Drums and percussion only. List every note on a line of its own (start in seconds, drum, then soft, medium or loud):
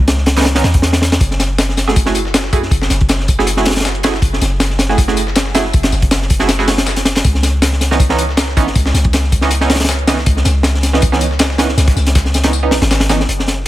0.08 snare loud
0.08 closed hi-hat medium
0.18 snare soft
0.26 snare loud
0.26 closed hi-hat medium
0.36 snare medium
0.36 closed hi-hat medium
0.41 snare medium
0.41 closed hi-hat medium
0.45 snare loud
0.45 closed hi-hat medium
0.55 snare loud
0.55 closed hi-hat medium
0.64 snare medium
0.64 closed hi-hat medium
0.74 kick medium
0.74 closed hi-hat medium
0.82 snare loud
0.82 closed hi-hat medium
0.93 snare loud
0.93 closed hi-hat medium
1.02 snare loud
1.02 closed hi-hat medium
1.12 snare loud
1.12 closed hi-hat medium
1.21 kick loud
1.21 closed hi-hat medium
1.21 tambourine medium
1.31 snare soft
1.40 snare medium
1.40 closed hi-hat medium
1.40 tambourine medium
1.58 snare loud
1.58 closed hi-hat medium
1.58 tambourine medium
1.69 snare soft
1.77 snare medium
1.77 closed hi-hat medium
1.77 tambourine medium
1.88 snare medium
1.96 kick loud
1.96 closed hi-hat medium
1.96 tambourine medium
2.06 snare medium
2.15 closed hi-hat medium
2.15 tambourine medium
2.25 snare soft
2.34 snare loud
2.34 closed hi-hat medium
2.34 tambourine medium
2.44 snare medium
2.53 kick loud
2.53 closed hi-hat medium
2.53 tambourine medium
2.63 snare soft
2.71 kick loud
2.71 closed hi-hat medium
2.71 tambourine medium
2.82 snare medium
2.90 snare soft
2.90 closed hi-hat medium
2.90 tambourine medium
3.01 kick medium
3.01 closed hi-hat soft
3.09 snare loud
3.09 closed hi-hat medium
3.09 tambourine medium
3.19 snare soft
3.28 kick medium
3.28 closed hi-hat medium
3.28 tambourine medium
3.39 snare medium
3.47 closed hi-hat medium
3.47 tambourine medium
3.57 snare soft
3.65 snare medium
3.65 closed hi-hat medium
3.65 open hi-hat medium
3.70 snare medium
3.70 closed hi-hat medium
3.76 snare medium
3.76 closed hi-hat medium
3.80 snare medium
3.80 closed hi-hat medium
3.85 snare loud
3.85 snare soft
3.85 closed hi-hat medium
3.85 tambourine medium
3.95 closed hi-hat soft
4.03 snare loud
4.03 closed hi-hat medium
4.03 tambourine medium
4.14 snare medium
4.14 snare soft
4.22 kick loud
4.22 closed hi-hat medium
4.22 tambourine medium
4.33 snare soft
4.41 snare medium
4.41 closed hi-hat medium
4.41 tambourine medium
4.60 snare loud
4.60 closed hi-hat medium
4.60 tambourine medium
4.70 snare soft
4.79 snare loud
4.79 closed hi-hat medium
4.79 tambourine medium
4.89 snare soft
4.98 kick loud
4.98 closed hi-hat medium
4.98 tambourine medium
5.08 snare medium
5.17 closed hi-hat medium
5.17 tambourine medium
5.27 snare soft
5.36 snare loud
5.36 closed hi-hat medium
5.36 tambourine medium
5.46 snare medium
5.54 snare loud
5.54 closed hi-hat medium
5.54 tambourine medium
5.65 snare soft
5.73 kick medium
5.73 closed hi-hat medium
5.73 tambourine medium
5.83 snare medium
5.83 snare loud
5.83 closed hi-hat medium
5.92 snare soft
5.92 tambourine medium
6.02 kick medium
6.02 closed hi-hat soft
6.02 closed hi-hat medium
6.11 snare loud
6.11 closed hi-hat medium
6.11 tambourine medium
6.22 snare soft
6.30 kick medium
6.30 closed hi-hat medium
6.30 tambourine medium
6.39 snare medium
6.49 snare loud
6.49 closed hi-hat medium
6.49 tambourine medium
6.59 snare soft
6.68 snare medium
6.68 closed hi-hat medium
6.68 open hi-hat medium
6.78 snare loud
6.78 closed hi-hat medium
6.87 snare loud
6.87 snare soft
6.87 tambourine medium
6.96 snare soft
6.96 closed hi-hat medium
6.96 closed hi-hat soft
7.05 snare medium
7.05 closed hi-hat medium
7.05 tambourine medium
7.16 snare medium
7.16 snare loud
7.16 closed hi-hat medium
7.24 kick loud
7.24 closed hi-hat medium
7.24 tambourine medium
7.35 snare soft
7.43 snare medium
7.43 closed hi-hat medium
7.43 tambourine medium
7.62 snare loud
7.62 closed hi-hat medium
7.62 tambourine medium
7.73 snare soft
7.81 snare medium
7.81 closed hi-hat medium
7.81 tambourine medium
7.91 snare medium
8.00 kick loud
8.00 closed hi-hat medium
8.00 tambourine medium
8.09 snare medium
8.18 closed hi-hat medium
8.18 tambourine medium
8.29 snare soft
8.37 snare loud
8.37 closed hi-hat loud
8.37 tambourine medium
8.48 snare medium
8.57 kick medium
8.57 closed hi-hat medium
8.57 tambourine medium
8.67 snare soft
8.75 kick loud
8.75 closed hi-hat medium
8.75 tambourine medium
8.86 snare medium
8.94 snare soft
8.94 closed hi-hat medium
8.94 tambourine medium
9.05 kick loud
9.05 closed hi-hat soft
9.13 snare loud
9.13 closed hi-hat medium
9.13 tambourine medium
9.23 snare soft
9.32 kick medium
9.32 closed hi-hat medium
9.32 tambourine medium
9.41 snare medium
9.51 closed hi-hat medium
9.51 tambourine medium
9.61 snare soft
9.70 snare medium
9.70 closed hi-hat medium
9.70 open hi-hat medium
9.74 snare medium
9.74 closed hi-hat medium
9.80 snare medium
9.80 closed hi-hat medium
9.84 snare medium
9.84 closed hi-hat medium
9.89 snare medium
9.89 snare loud
9.89 closed hi-hat medium
9.89 tambourine medium
9.99 closed hi-hat soft
10.07 snare loud
10.07 closed hi-hat medium
10.07 tambourine medium
10.18 snare soft
10.18 snare medium
10.26 kick loud
10.26 closed hi-hat medium
10.26 tambourine medium
10.37 snare soft
10.45 snare soft
10.45 closed hi-hat medium
10.45 tambourine medium
10.63 snare loud
10.63 closed hi-hat medium
10.63 tambourine medium
10.74 snare soft
10.83 snare medium
10.83 closed hi-hat medium
10.83 tambourine medium
10.94 snare medium
11.02 kick loud
11.02 closed hi-hat medium
11.02 tambourine medium
11.13 snare medium
11.21 closed hi-hat medium
11.21 tambourine medium
11.31 snare soft
11.39 snare loud
11.39 closed hi-hat medium
11.39 tambourine medium
11.50 snare medium
11.58 snare loud
11.58 closed hi-hat medium
11.58 tambourine medium
11.69 snare soft
11.78 snare medium
11.78 closed hi-hat medium
11.78 tambourine medium
11.88 kick loud
11.88 snare medium
11.88 closed hi-hat medium
11.96 snare soft
11.96 tambourine medium
12.06 snare soft
12.06 closed hi-hat medium
12.06 closed hi-hat soft
12.15 kick loud
12.15 snare loud
12.15 closed hi-hat medium
12.15 tambourine medium
12.25 snare soft
12.34 snare medium
12.34 closed hi-hat medium
12.34 tambourine medium
12.43 snare loud
12.43 closed hi-hat medium
12.53 tambourine medium
12.71 snare loud
12.71 closed hi-hat medium
12.71 open hi-hat medium
12.82 snare loud
12.82 closed hi-hat medium
12.91 snare loud
12.91 closed hi-hat medium
12.91 tambourine medium
13.00 snare loud
13.00 snare soft
13.00 closed hi-hat medium
13.09 snare loud
13.09 snare medium
13.09 closed hi-hat medium
13.09 tambourine medium
13.20 snare medium
13.29 closed hi-hat medium
13.39 snare soft
13.48 snare medium
13.48 closed hi-hat medium